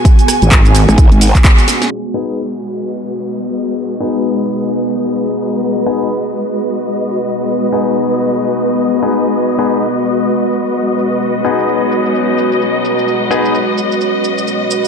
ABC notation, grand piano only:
X:1
M:4/4
L:1/16
Q:"Swing 16ths" 1/4=129
K:G#m
V:1 name="Grand piano"
z16 | z2 [B,DGB]2 z12 | z2 [B,DGB]12- [B,DGB]2- | [B,DGB]2 [B,DGB]2 z12 |
z2 [B,DGB]8- [B,DGB]3 [B,DGB]3- | [B,DGB]2 [B,DGB]2 z12 | z2 [B,DGB]12- [B,DGB]2- | [B,DGB]2 [B,DGB]2 z12 |]